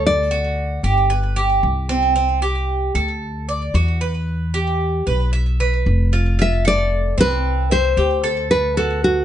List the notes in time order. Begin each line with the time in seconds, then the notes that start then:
Already playing: D2 A4
0.07 D5
0.31 F#4
0.83 G1 G4
1.10 B4
1.36 G4
1.63 C2
1.89 C4
2.16 C4
2.42 G4
2.95 D2 A4
3.49 D5
3.74 E2 F#4
4.01 B4
4.54 G4
5.07 B1 B4
5.33 E5
5.60 B4
5.86 F1
6.13 F4
6.39 F4 E5
6.65 A4 D5
7.18 C2 C4 B4
7.71 C5 E5
7.97 D2 G4
8.24 A4
8.51 B4
8.77 F#4 A4
9.04 F#4